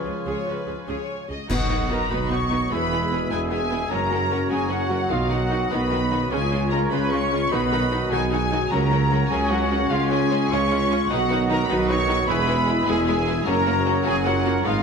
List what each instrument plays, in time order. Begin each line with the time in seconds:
Already playing: trombone section C#3 G#3, french horn section F3, oboe F4, clarinet G#4, violin section B4 G#5, trumpet section C#5, flute section C#5
0.05 double bass section C#2, tuba C#2, cello section C#3, viola section G#4
0.26 double bass section C#2, tuba C#2, cello section C#3, viola section G#4, violin section C#5
0.46 double bass section C#2, tuba C#2, cello section C#3, viola section F#4, violin section B4
0.67 double bass section C#2, tuba C#2, cello section C#3, viola section G#4
0.88 double bass section C#2, tuba C#2, cello section C#3, viola section G#4, violin section C#5
1.29 double bass section C#2, tuba C#2, cello section C#3, viola section G#4, violin section D#5
1.48 double bass section B1, tuba B1, trombone section B2 D#3, cello section B2, french horn section F#3 B3, viola section B3 D#4, violin section F#4 B4 F#5, trumpet section F#4, clarinet F#4, oboe D#5, flute section F#5, concert bass drum, crash
1.69 viola section B3 D#4, violin section F#4 B4
1.89 viola section B3 D#4, violin section F#4 B4 A#5, trumpet section A#4, flute section A#5
2.08 double bass section B1, tuba B1, cello section B2, viola section B3 D#4, clarinet F#4, violin section F#4 B4 B5, trumpet section B4, oboe D#5, flute section B5
2.28 viola section B3 D#4, violin section F#4 B4 C#6, trumpet section C#5, flute section C#6
2.51 viola section B3 D#4, violin section F#4 B4
2.70 double bass section E1, tuba E1, cello section E2, trombone section E3, french horn section G#3, viola section B3 E4, violin section G#4 B5, clarinet G#4, trumpet section B4, oboe E5, flute section B5
2.92 viola section B3 E4, violin section G#4
3.11 viola section B3 E4, violin section G#4
3.30 double bass section E1, tuba E1, cello section E2, viola section B3 E4, trumpet section G#4, clarinet G#4, violin section G#4 G#5, oboe E5, flute section G#5
3.50 viola section B3 E4, trumpet section G#4, violin section G#4 G#5, flute section G#5
3.71 viola section B3 E4, violin section G#4
3.90 double bass section F#1, tuba F#1, cello section F#2, trombone section C#3 F#3, viola section F#3 C#4, french horn section C#4 F#4, violin section F#4 A#4 A#5, clarinet F#4, trumpet section A#4, oboe C#5, flute section A#5
4.11 viola section F#3 C#4, violin section F#4 A#4
4.31 viola section F#3 C#4, violin section F#4 A#4
4.50 double bass section F#1, tuba F#1, cello section F#2, viola section F#3 C#4, violin section F#4 A#4 G#5, trumpet section G#4, flute section G#5
4.70 viola section F#3 C#4, violin section F#4 A#4 F#5, trumpet section F#4, flute section F#5
4.89 viola section F#3 C#4, violin section F#4 A#4
5.09 double bass section B1, tuba B1, cello section B2, viola section D#3 D#4, trombone section D#3, french horn section B3, trumpet section F4, violin section F#4 F5, clarinet F#4, oboe D#5, flute section F5
5.28 viola section D#3 D#4, violin section F#4 F#5, trumpet section F#4, flute section F#5
5.50 viola section D#3 D#4, violin section F#4
5.70 double bass section B1, tuba B1, cello section B2, viola section D#3 D#4, violin section F#4 B5, clarinet F#4, trumpet section B4, oboe D#5, flute section B5
5.91 viola section D#3 D#4, violin section F#4
6.10 viola section D#3 D#4, violin section F#4
6.30 double bass section C#2, tuba C#2, cello section C#3, trombone section C#3 G#3, viola section G#3 C#4, french horn section C#4 F4, violin section C#4 F4 G#5, clarinet F4, trumpet section G#4, oboe C#5, flute section G#5
6.51 viola section G#3 C#4, violin section C#4 F4
6.70 viola section G#3 C#4, violin section C#4 F4 A#5, trumpet section A#4, flute section A#5
6.90 double bass section C#2, tuba C#2, cello section C#3, viola section G#3 C#4, violin section C#4 F4 B5, trumpet section B4, flute section B5
7.10 viola section G#3 C#4, violin section C#4 F4 C#6, trumpet section C#5, flute section C#6
7.32 viola section G#3 C#4, violin section C#4 F4
7.50 tuba B1, double bass section B1, cello section B2, trombone section D#3 F#3, viola section D#3 D#4, french horn section B3 F#4, clarinet F#4, violin section F#4 B5, trumpet section B4, oboe D#5, flute section B5
7.72 viola section D#3 D#4, violin section F#4
7.91 viola section D#3 D#4, violin section F#4
8.09 double bass section B1, tuba B1, cello section B2, viola section D#3 D#4, violin section F#4 G#5, trumpet section G#4, flute section G#5
8.30 viola section D#3 D#4, violin section F#4 G#5, trumpet section G#4, flute section G#5
8.51 viola section D#3 D#4, violin section F#4
8.71 double bass section C#2, tuba C#2, trombone section C#3, cello section C#3, viola section F#3 C#4, french horn section C#4, clarinet F#4, violin section F#4 A#4 A#5, trumpet section A#4, oboe C#5, flute section A#5
8.91 viola section F#3 C#4, violin section F#4 A#4
9.11 viola section F#3 C#4, violin section F#4 A#4
9.30 tuba C#2, double bass section C#2, cello section C#3, viola section F#3 C#4, violin section F#4 A#4 G#5, trumpet section G#4, flute section G#5
9.50 viola section F#3 C#4, trumpet section F#4, violin section F#4 A#4 F#5, flute section F#5
9.69 viola section F#3 C#4, violin section F#4 A#4
9.89 double bass section C#2, tuba C#2, cello section C#3, trombone section G#3, viola section G#3 C#4, clarinet F4, trumpet section F4, french horn section F4, violin section F4 G#4 F5, oboe C#5, flute section F5
10.10 viola section G#3 C#4, violin section F4 G#4 G#5, trumpet section G#4, flute section G#5
10.31 viola section G#3 C#4, violin section F4 G#4
10.50 double bass section C#2, tuba C#2, cello section C#3, viola section G#3 C#4, clarinet F4, violin section F4 G#4 C#6, trumpet section C#5, oboe C#5, flute section C#6
10.72 viola section G#3 C#4, violin section F4 G#4
10.91 viola section G#3 C#4, violin section F4 G#4
11.10 tuba B1, double bass section B1, cello section B2, viola section D#3 D#4, trombone section D#3 F#3, french horn section B3 F#4, violin section F#4 B4 F#5, trumpet section F#4, clarinet F#4, oboe D#5, flute section F#5
11.29 viola section D#3 D#4, violin section F#4 B4
11.49 viola section D#3 D#4, violin section F#4 B4 A#5, trumpet section A#4, flute section A#5
11.68 double bass section B1, tuba B1, cello section B2, viola section D#3 D#4, violin section F#4 B4 B5, clarinet F#4, trumpet section B4, oboe D#5, flute section B5
11.88 viola section D#3 D#4, violin section F#4 B4 C#6, trumpet section C#5, flute section C#6
12.08 viola section D#3 D#4, violin section F#4 B4
12.28 double bass section E1, tuba E1, cello section E2, trombone section E3 G#3, viola section G#3 E4, french horn section E4, clarinet G#4, violin section G#4 B4 B5, trumpet section B4, oboe E5, flute section B5
12.48 viola section G#3 E4, violin section G#4 B4
12.66 viola section G#3 E4, violin section G#4 B4
12.87 double bass section E1, tuba E1, cello section E2, viola section G#3 E4, violin section G#4 B4 G#5, trumpet section G#4, clarinet G#4, oboe E5, flute section G#5
13.05 viola section G#3 E4, violin section G#4 B4 G#5, trumpet section G#4, flute section G#5
13.26 viola section G#3 E4, violin section G#4 B4
13.45 double bass section F#1, tuba F#1, cello section F#2, trombone section C#3 F#3, french horn section F#3 C#4, viola section A#3 C#4, violin section F#4 A#5, clarinet F#4, trumpet section A#4, oboe C#5, flute section A#5
13.66 viola section A#3 C#4, violin section F#4
13.86 viola section A#3 C#4, violin section F#4
14.03 double bass section F#1, tuba F#1, cello section F#2, viola section A#3 C#4, violin section F#4 G#5, trumpet section G#4, flute section G#5
14.25 viola section A#3 C#4, clarinet F4, violin section F#4 F#5, trumpet section A#4, flute section F#5
14.44 viola section A#3 C#4, violin section F#4
14.64 double bass section G#1, tuba G#1, cello section G#2, trombone section D#3 G#3, viola section G#3 B3, french horn section B3 D#4, violin section D#4 B4 F5, clarinet D#4, trumpet section F4, oboe D#5, flute section F5